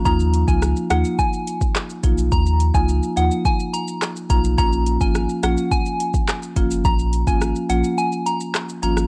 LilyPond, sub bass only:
\new Staff \with { instrumentName = "Sub bass" } { \clef bass \time 4/4 \key ees \minor \tempo 4 = 106 ees,8. des,8 r16 ees,16 r4. r16 ces,8 | ees,8. des,8 r16 ees,16 r4. r16 ces,8 | bes,,8. aes,,8 r16 bes,,16 r4. r16 ges,,8 | bes,,8. aes,,8 r16 bes,,16 r4. r16 aes,,8 | }